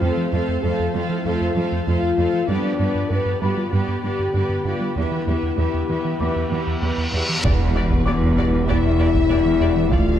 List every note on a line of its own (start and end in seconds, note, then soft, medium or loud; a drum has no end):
0.00 0.10 F2 medium
0.00 0.11 F2 medium
0.00 2.50 F3 medium
0.00 0.32 A3 medium
0.00 2.46 C4 medium
0.00 0.64 C4 medium
0.00 2.50 F4 medium
0.00 2.49 A4 medium
0.00 0.32 A4 soft
0.00 0.32 C5 soft
0.00 0.91 F5 soft
0.00 0.31 F5 soft
0.00 0.91 F6 soft
0.17 0.27 F3 soft
0.33 0.41 F2 soft
0.33 0.42 F2 medium
0.33 0.63 A3 soft
0.33 0.63 A4 soft
0.33 0.63 C5 soft
0.33 0.62 F5 soft
0.48 0.58 F2 medium
0.63 0.73 F2 medium
0.63 0.71 F2 soft
0.63 0.94 A3 soft
0.63 0.95 A4 medium
0.63 0.94 A4 medium
0.63 0.93 C5 soft
0.63 0.93 F5 soft
0.79 0.89 F2 medium
0.94 1.02 F2 soft
0.94 1.04 F3 soft
0.94 1.25 A3 soft
0.94 1.10 F4 medium
0.94 1.25 A4 soft
0.94 1.25 C5 soft
0.94 1.25 F5 soft
1.10 1.19 F3 medium
1.10 1.26 E4 medium
1.25 1.33 F2 soft
1.25 1.35 F2 medium
1.25 1.56 A3 soft
1.25 1.71 F4 medium
1.25 1.56 A4 medium
1.25 1.56 C5 soft
1.25 1.56 F5 medium
1.41 1.50 F2 soft
1.56 1.64 F2 medium
1.56 1.66 F3 medium
1.56 1.87 A3 soft
1.56 1.87 A4 soft
1.56 1.86 C5 soft
1.56 1.86 F5 soft
1.72 1.81 F2 medium
1.87 1.97 F2 medium
1.87 1.95 F2 soft
1.87 2.18 A3 soft
1.87 2.49 F4 medium
1.87 2.18 A4 soft
1.87 2.17 C5 soft
1.87 2.18 F5 soft
2.03 2.12 F2 soft
2.18 2.27 F2 medium
2.18 2.26 F2 soft
2.18 2.49 A3 soft
2.18 2.49 A4 soft
2.18 2.49 C5 soft
2.18 2.49 F5 soft
2.33 2.43 F3 medium
2.48 2.58 G2 medium
2.48 2.57 G2 medium
2.48 4.97 D3 medium
2.48 2.79 B3 soft
2.48 7.43 B3 medium
2.48 3.11 D4 medium
2.48 2.79 G4 soft
2.48 7.43 G4 medium
2.48 2.78 B4 soft
2.48 7.45 B4 medium
2.48 2.78 D5 soft
2.64 2.73 G3 soft
2.79 2.89 G2 medium
2.79 2.88 G2 soft
2.79 3.10 B3 soft
2.79 3.10 G4 soft
2.79 3.10 B4 soft
2.79 3.10 D5 soft
2.95 3.04 G2 medium
3.10 3.20 G2 medium
3.10 3.19 G2 soft
3.10 3.41 B3 soft
3.10 3.41 G4 soft
3.10 3.42 B4 medium
3.10 3.41 B4 soft
3.10 3.41 D5 soft
3.26 3.35 G2 medium
3.42 3.50 G2 soft
3.42 3.51 G3 soft
3.42 3.72 B3 soft
3.42 3.57 G4 medium
3.42 3.72 G4 soft
3.42 3.72 B4 soft
3.42 3.72 D5 soft
3.42 5.24 B5 soft
3.57 3.67 G3 medium
3.57 3.73 F4 medium
3.73 3.82 G2 medium
3.73 3.81 G2 soft
3.73 4.03 B3 soft
3.73 4.66 G4 medium
3.73 4.03 G4 soft
3.73 4.02 B4 soft
3.73 4.02 D5 soft
3.88 3.98 G2 medium
4.03 4.12 G2 soft
4.03 4.13 G3 soft
4.03 4.34 B3 soft
4.03 4.35 G4 soft
4.03 4.33 B4 soft
4.03 4.33 D5 soft
4.19 4.29 G2 soft
4.34 4.44 G2 medium
4.34 4.43 G2 soft
4.34 4.66 B3 soft
4.34 4.65 G4 soft
4.34 4.65 B4 soft
4.34 4.65 D5 soft
4.49 4.59 G2 soft
4.65 4.74 G2 medium
4.65 4.73 G2 soft
4.65 4.97 B3 soft
4.65 4.97 F4 medium
4.65 4.97 G4 soft
4.65 4.96 B4 soft
4.65 4.96 D5 soft
4.81 4.90 G3 soft
4.96 5.05 E2 medium
4.96 5.04 E2 soft
4.96 7.44 E3 medium
4.96 5.27 B3 soft
4.96 7.13 E4 medium
4.96 5.27 G4 soft
4.96 5.27 B4 soft
4.96 5.27 E5 soft
4.96 reverse cymbal soft
5.11 5.21 E3 soft
5.27 5.37 E2 soft
5.27 5.35 E2 soft
5.27 5.58 B3 soft
5.27 5.58 G4 soft
5.27 5.57 B4 soft
5.27 5.57 E5 soft
5.43 5.52 E2 soft
5.58 5.66 E2 soft
5.58 5.68 E2 medium
5.58 5.89 B3 soft
5.58 5.89 G4 soft
5.58 5.88 B4 soft
5.58 5.88 E5 soft
5.74 5.83 E2 medium
5.89 5.97 E2 soft
5.89 5.99 E3 soft
5.89 6.19 B3 soft
5.89 6.19 G4 soft
5.89 6.19 B4 soft
5.89 6.19 E5 soft
6.05 6.14 E3 medium
6.20 6.30 E2 soft
6.20 6.28 E2 soft
6.20 6.50 B3 soft
6.20 6.50 G4 soft
6.20 6.50 B4 soft
6.20 6.50 E5 soft
6.20 7.40 D6 soft
6.36 6.45 E2 soft
6.51 6.59 E2 soft
6.51 6.61 E3 soft
6.51 6.81 B3 soft
6.51 6.81 G4 soft
6.51 6.81 B4 soft
6.51 6.81 E5 soft
6.67 6.76 E2 medium
6.82 6.90 E2 soft
6.82 6.92 E2 medium
6.82 7.12 B3 soft
6.82 7.12 G4 soft
6.82 7.11 B4 soft
6.82 7.11 E5 soft
6.98 7.07 E2 soft
7.12 7.23 E2 soft
7.12 7.21 E2 soft
7.12 7.44 B3 soft
7.12 7.43 G4 soft
7.12 7.42 B4 soft
7.12 7.43 E5 soft
7.29 7.38 E3 soft
7.44 9.94 E1 medium
7.44 7.99 E1 medium
7.44 7.53 E2 medium
7.44 7.99 E2 medium
7.44 7.52 E3 soft
7.44 9.88 E3 medium
7.44 8.64 B3 medium
7.44 9.88 B3 medium
7.44 7.52 G4 soft
7.44 9.88 G4 medium
7.44 8.64 B4 medium
7.44 7.52 D5 soft
7.44 10.19 D5 medium
7.44 taiko medium
7.44 impact medium
7.60 7.69 E2 medium
7.75 7.85 E2 medium
7.75 7.83 E3 soft
7.75 7.83 G4 soft
7.75 7.83 D5 soft
7.91 8.01 E2 medium
7.91 taiko medium
8.06 8.61 E1 medium
8.06 8.61 E2 medium
8.06 8.16 E2 medium
8.06 8.14 E3 soft
8.06 8.14 G4 soft
8.06 8.14 D5 soft
8.06 9.88 D6 soft
8.23 8.32 E2 medium
8.37 8.47 E2 medium
8.37 8.46 E3 soft
8.37 8.46 G4 soft
8.37 8.46 D5 soft
8.37 taiko medium
8.53 8.62 E3 medium
8.68 9.23 E1 medium
8.68 9.23 E2 medium
8.68 8.78 E2 medium
8.68 8.77 E3 medium
8.68 9.92 E4 medium
8.68 8.77 G4 medium
8.68 8.76 D5 soft
8.68 9.92 E5 medium
8.68 taiko medium
8.84 8.93 E2 medium
8.99 9.08 E2 medium
8.99 9.08 E3 soft
8.99 9.08 G4 soft
8.99 9.07 D5 soft
9.14 9.24 E2 medium
9.14 taiko medium
9.30 9.85 E1 medium
9.30 9.39 E2 medium
9.30 9.85 E2 medium
9.30 9.38 E3 soft
9.30 9.39 G4 soft
9.30 9.38 D5 soft
9.46 9.55 E3 medium
9.61 9.70 E2 medium
9.61 9.70 E3 soft
9.61 9.70 G4 soft
9.61 9.69 D5 soft
9.76 9.86 E3 medium
9.91 10.19 D1 medium
9.91 10.19 D2 medium
9.91 10.01 D2 medium
9.91 10.00 F3 soft
9.91 10.19 F3 medium
9.91 10.19 A3 medium
9.91 10.19 F4 medium
9.91 10.00 A4 medium
9.91 10.00 D5 soft
9.91 10.19 F5 medium
9.91 taiko medium
10.08 10.17 D2 medium